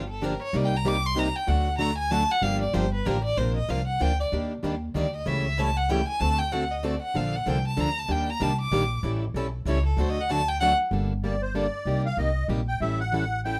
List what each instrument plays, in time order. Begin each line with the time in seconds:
Already playing: upright bass G1
0.10 violin A4
0.21 steel-string acoustic guitar D3 F3 A#3 D4 G4, violin A#4
0.42 violin C#5
0.53 upright bass C2, steel-string acoustic guitar C3 G3 A#3 D#4 G4, violin D5
0.65 violin G5
0.76 violin A#5
0.85 steel-string acoustic guitar C3 G3 A#3 D#4 G4, violin D6
1.06 violin C6
1.15 steel-string acoustic guitar C3 G3 A#3 D#4 G4, violin A#5
1.36 violin G5
1.47 upright bass D2, steel-string acoustic guitar D3 F#3 A3 D4 F#4 A4, violin F#5
1.78 steel-string acoustic guitar D3 F#3 A3 D4 F#4 A4, violin A#5
1.98 violin G#5
2.10 steel-string acoustic guitar D3 F#3 A3 D4 F#4 A4, violin A5
2.31 violin F#5
2.41 upright bass G1, steel-string acoustic guitar D3 F3 A#3 D4 G4, violin F5
2.61 violin D5
2.73 upright bass G1, steel-string acoustic guitar D3 F3 A#3 D4 G4, violin C5
2.94 violin B4
3.05 upright bass A1, steel-string acoustic guitar D3 F3 A#3 D4 G4, violin A#4
3.25 violin D5
3.37 upright bass A#1, steel-string acoustic guitar C3 F3 A#3 D4 F4 A#4 C5, violin C5
3.57 violin D#5
3.69 upright bass C2, steel-string acoustic guitar C3 F3 A#3 D4 F4 A#4 C5, violin F5
3.87 violin F#5
4.00 upright bass D2, steel-string acoustic guitar C3 F3 A#3 D4 F4 A#4 C5, violin G5
4.20 violin D5
4.32 upright bass D#2, steel-string acoustic guitar D#3 G3 A#3 D4 G4
4.63 upright bass D#2, steel-string acoustic guitar D#3 G3 A#3 D4 G4
4.94 upright bass D2, steel-string acoustic guitar D#3 G3 A#3 D4 G4, violin D5
5.16 violin D#5
5.26 upright bass C#2, steel-string acoustic guitar C#3 E3 G3 A3 C#4 E4 G4 A4 C#5, violin E5
5.57 steel-string acoustic guitar C#3 E3 G3 A3 C#4 E4 G4 A4 C#5, violin A5
5.77 violin F#5
5.89 steel-string acoustic guitar C#3 E3 G3 A3 C#4 E4 G4 A4 C#5, violin G5
6.08 violin G#5
6.20 upright bass D2, steel-string acoustic guitar D3 A3 C4 F#4 A4, violin A5
6.38 violin G5
6.52 steel-string acoustic guitar D3 A3 C4 F#4 A4, violin F#5
6.71 violin D#5
6.84 steel-string acoustic guitar D3 A3 C4 F#4 A4, violin D5
7.02 violin F#5
7.14 upright bass A#1, steel-string acoustic guitar D3 F3 A#3 D4 A4, violin F5
7.36 violin F#5
7.46 upright bass C2, steel-string acoustic guitar D3 F3 A#3 D4 A4, violin G5
7.67 violin A5
7.77 upright bass D2, steel-string acoustic guitar D3 F3 A#3 D4 A4, violin A#5
7.99 violin A5
8.08 upright bass D#2, steel-string acoustic guitar D#3 G3 A#3 D4 G4, violin G5
8.30 violin A#5
8.40 upright bass C2, steel-string acoustic guitar D#3 G3 A#3 D4 G4, violin A5
8.61 violin D6
8.71 upright bass A#1, steel-string acoustic guitar D#3 G3 A#3 D4 G4
9.03 upright bass A1, steel-string acoustic guitar E3 G3 C#4 E4 A4
9.34 upright bass B1, steel-string acoustic guitar E3 G3 C#4 E4 A4
9.65 upright bass C#2, steel-string acoustic guitar E3 G3 C#4 E4 A4, violin C#5
9.86 violin A4
9.97 upright bass D2, steel-string acoustic guitar D3 F#3 A3 D4 F#4 A4, violin C5
10.09 violin D#5
10.21 violin F#5
10.30 steel-string acoustic guitar D3 F#3 A3 D4 F#4 A4, violin A5
10.48 violin G5
10.60 steel-string acoustic guitar D3 F#3 A3 D4 F#4 A4, violin F#5
10.91 upright bass G1, steel-string acoustic guitar D3 G3 A#3 D4 A4
11.24 steel-string acoustic guitar D3 G3 A#3 D4 A4, accordion D5
11.42 accordion C5
11.55 steel-string acoustic guitar D3 G3 A#3 D4 A4, accordion D5
11.85 upright bass C2, steel-string acoustic guitar C3 G3 A#3 D#4 G4
12.06 accordion F5
12.17 upright bass C2, steel-string acoustic guitar C3 G3 A#3 D#4 G4, accordion D#5
12.48 upright bass A#1, steel-string acoustic guitar C3 G3 A#3 D#4 G4
12.68 accordion G5
12.80 upright bass A1, steel-string acoustic guitar E3 G3 C#4 E4 A4, accordion E5
13.00 accordion F#5
13.12 steel-string acoustic guitar E3 G3 C#4 E4 A4
13.45 steel-string acoustic guitar E3 G3 C#4 E4 A4, accordion G5